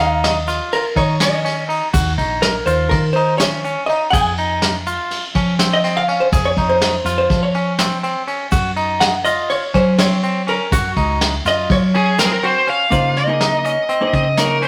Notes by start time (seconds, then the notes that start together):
Already playing: D#2
0.00 D#4 F5
0.24 D#5, snare, ride
0.48 F4, snare, ride, shaker
0.72 A#4, ride
0.96 D#3 D#4 C#5, kick, ride
1.20 C#4 D#5, snare, ride, shaker
1.45 C#4, snare, ride
1.69 D#4, ride
1.93 D#2 F#4, kick, ride, shaker
2.18 A#1 D#4, kick, ride
2.42 A#4, snare, ride, shaker
2.66 D#2 F4 C5, ride, shaker
2.89 D#3 A#4, kick, ride
3.13 D#4 C5, ride
3.38 C#4 C#5, snare, ride, shaker
3.64 C#4, ride, shaker
3.86 D#4 D#5, ride
4.10 F2 G#4 G#5, kick, ride, shaker
4.37 D#4, ride
4.62 snare, ride
4.86 F4, ride, shaker
5.11 snare, ride
5.35 F3 C#4, kick, ride
5.59 C4, snare, ride, shaker
5.73 D#5
5.84 C4, snare, ride, shaker
5.97 F5
6.08 C#4, ride
6.20 C5
6.32 F2 G#4, kick, ride, shaker
6.45 C#5
6.56 F2 D#4, kick, ride
6.69 C5
6.81 snare, ride
7.05 F2 F4, snare, ride, shaker
7.18 C5
7.30 F3, kick, snare, ride
7.43 C#5
7.54 C#4, ride
7.79 C4, snare, ride, shaker
8.03 C4, ride, shaker
8.27 C#4, ride
8.52 F#2 F#4, kick, ride, shaker
8.76 D#4, ride
9.00 F#5, snare, ride
9.25 F4 D#5, ride, shaker
9.50 C#5, ride
9.74 F#3 C#4 C5, kick, ride
9.98 C4 C#5, snare, ride, shaker
10.23 C4, ride, shaker
10.47 C#4 A#4, ride
10.72 F#2 F#4, kick, ride, shaker
10.96 C#2 D#4, kick, ride
11.21 snare, ride
11.45 F#2 F4 D#5, snare, ride, shaker
11.70 F#3 C#5, kick, ride
11.94 C#4 G#4, ride
12.19 C4 A#4, snare, ride, shaker
12.26 G#4
12.33 A#4
12.43 C4 F#4 C5, ride
12.67 C#4 F5, ride
12.90 C#3 A#3 D#4 F4 G#4 C5, kick, closed hi-hat, shaker
13.16 D#5, snare, closed hi-hat
13.27 A#3 D#4 G#4 A#4
13.41 D#4, snare, closed hi-hat
13.65 C#4 D#5, closed hi-hat, shaker
13.89 C4, closed hi-hat
14.01 A#3 D#4 G#4 C5
14.13 C#3 D#5, kick, closed hi-hat
14.37 A#3 D#4 G#4 A#4 C#5, snare, closed hi-hat, shaker
14.62 C#4 C5, closed hi-hat, shaker